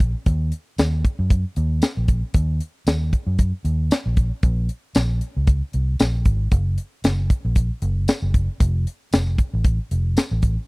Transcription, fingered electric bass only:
0.00 0.13 A#1 medium
0.26 0.51 D#2 loud
0.79 1.03 D#2 medium
1.19 1.43 F#2 medium
1.57 1.81 D#2 medium
1.97 2.22 A#1 medium
2.35 2.59 D#2 loud
2.87 3.11 D#2 medium
3.27 3.51 F#2 medium
3.65 3.89 D#2 medium
4.06 4.30 A#1 medium
4.43 4.68 A#1 loud
4.95 5.20 A#1 medium
5.37 5.61 C#2 medium
5.74 5.98 C2 medium
6.00 6.24 A#1 medium
6.26 6.50 G#1 medium
6.52 6.76 F#1 loud
7.04 7.29 F#1 medium
7.45 7.69 A#1 medium
7.82 8.07 F#1 medium
8.22 8.47 F#1 medium
8.60 8.85 F1 loud
9.13 9.37 F1 medium
9.53 9.78 A1 medium
9.91 10.16 F1 medium
10.31 10.56 A1 medium

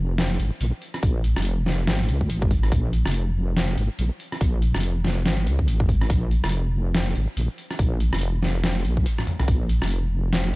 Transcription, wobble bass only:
0.00 0.38 F1 loud
0.39 0.51 G#1 medium
0.61 0.72 A#1 medium
1.03 1.35 A#1 loud
1.36 1.89 F1 loud
1.88 2.10 G#1 medium
2.09 2.31 C#2 medium
2.30 2.71 G#1 medium
2.72 3.04 A#1 loud
3.06 3.77 F1 loud
3.77 3.89 G#1 medium
3.99 4.10 A#1 medium
4.41 4.73 A#1 loud
4.75 5.27 F1 loud
5.26 5.48 G#1 medium
5.47 5.69 C#2 medium
5.68 6.09 G#1 medium
6.10 6.42 A#1 medium
6.44 7.15 F1 loud
7.16 7.27 G#1 medium
7.37 7.48 A#1 medium
7.79 8.11 A#1 loud
8.13 8.86 F1 loud
8.85 9.06 A#1 loud
9.48 9.80 A#1 loud
9.82 10.53 F1 loud

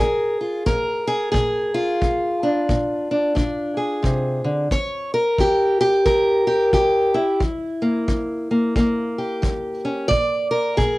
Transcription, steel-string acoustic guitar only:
0.00 0.60 A#2 medium
0.00 1.06 G#4 medium
0.00 0.40 A#4 medium
0.41 0.66 F4 soft
0.66 1.28 A#2 medium
0.66 1.74 A#4 loud
1.07 1.30 G#4 loud
1.32 1.96 A#2 medium
1.32 2.42 G#4 medium
1.74 4.45 F4 medium
2.01 2.63 A#2 medium
2.43 3.10 D4 medium
2.69 3.31 A#2 medium
3.11 3.35 D4 soft
3.35 3.98 A#2 medium
3.35 4.68 D4 soft
3.77 4.67 G#4 medium
4.02 4.44 C3 medium
4.44 4.71 D3 medium
4.72 5.34 D#3 medium
4.72 5.13 C#5 loud
5.14 6.04 A#4 loud
5.39 6.01 D#3 medium
5.39 5.80 G4 medium
5.81 6.46 G4 medium
6.06 6.68 D#3 medium
6.06 7.15 A#4 loud
6.47 6.73 G4 medium
6.73 7.35 D#3 medium
6.73 7.41 G4 medium
7.14 9.84 E4 medium
7.40 8.03 E3 medium
7.82 8.50 A#3 soft
8.08 8.70 E3 medium
8.51 8.76 A#3 soft
8.76 9.38 E3 medium
8.76 10.80 A#3 soft
9.18 10.08 G4 medium
9.42 10.05 E3 medium
9.85 10.07 C#4 soft
10.08 10.71 A#2 medium
10.08 10.50 D5 loud
10.51 10.98 A#4 medium
10.77 10.98 A#2 medium
10.77 10.98 G#4 medium

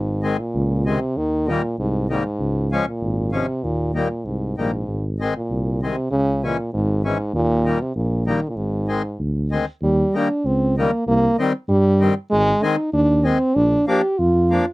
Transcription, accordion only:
0.22 0.36 D#3 soft
0.22 0.37 G#3 soft
0.22 0.37 C4 medium
0.85 0.99 D#3 soft
0.85 1.00 G#3 soft
0.85 1.00 C4 medium
1.48 1.61 D#3 medium
1.48 1.62 G3 medium
1.48 1.62 A#3 medium
2.09 2.23 D#3 medium
2.09 2.24 G3 soft
2.09 2.24 A#3 medium
2.72 2.85 F3 medium
2.72 2.85 G#3 medium
2.72 2.86 C#4 medium
3.32 3.46 F3 medium
3.32 3.46 G#3 soft
3.32 3.46 C#4 medium
3.94 4.08 D#3 medium
3.94 4.08 G3 soft
3.94 4.09 A#3 medium
4.57 4.71 D#3 soft
4.57 4.71 G3 soft
4.57 4.72 A#3 soft
5.20 5.33 D#3 medium
5.20 5.34 G#3 medium
5.20 5.34 C4 medium
5.82 5.96 D#3 soft
5.82 5.96 G#3 soft
5.82 5.96 C4 soft
6.43 6.57 E3 medium
6.43 6.57 G#3 medium
6.43 6.57 C#4 medium
7.04 7.17 E3 soft
7.04 7.18 G#3 soft
7.04 7.18 C#4 medium
7.65 7.78 D#3 medium
7.65 7.79 G3 medium
7.65 7.79 A#3 medium
8.26 8.40 D#3 medium
8.26 8.40 G3 soft
8.26 8.40 A#3 medium
8.88 9.02 D#3 medium
8.88 9.02 G#3 medium
8.88 9.03 C4 medium
9.51 9.65 D#3 medium
9.51 9.65 G#3 soft
9.51 9.66 C4 medium
10.14 10.28 D#3 medium
10.14 10.28 G3 medium
10.14 10.29 A#3 medium
10.77 10.91 D#3 medium
10.77 10.91 G3 soft
10.77 10.91 A#3 medium
11.38 11.52 D#3 medium
11.38 11.52 G3 medium
11.38 11.53 C4 medium
12.00 12.14 D#3 medium
12.00 12.14 G3 medium
12.00 12.14 C4 medium
12.62 12.76 D#3 medium
12.62 12.76 G#3 medium
12.62 12.76 C4 medium
13.23 13.38 D#3 medium
13.23 13.38 G#3 soft
13.23 13.39 C4 medium
13.87 14.01 F3 medium
13.87 14.01 A#3 medium
13.87 14.02 D4 medium
14.50 14.65 F3 medium
14.50 14.65 A#3 soft
14.50 14.66 D4 medium

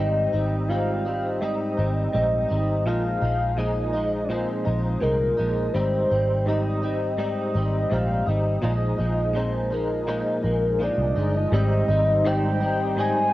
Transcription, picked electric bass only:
0.00 0.26 G#1 loud
0.34 1.56 G#1 medium
1.79 2.07 G#1 medium
2.15 2.43 A#1 medium
2.51 2.86 G#1 medium
2.86 3.15 A#1 medium
3.22 4.44 A#1 medium
4.67 4.96 A#1 medium
5.03 5.32 C2 medium
5.40 5.68 A#1 medium
5.75 6.04 G#1 medium
6.11 7.34 G#1 medium
7.55 7.84 G#1 medium
7.92 8.21 A#1 medium
8.28 8.57 G#1 medium
8.63 8.93 A#1 medium
8.99 10.22 A#1 medium
10.44 10.88 A#1 medium
10.98 11.13 C2 medium
11.16 11.45 G1 medium
11.52 11.81 G#1 loud
11.88 13.12 G#1 loud

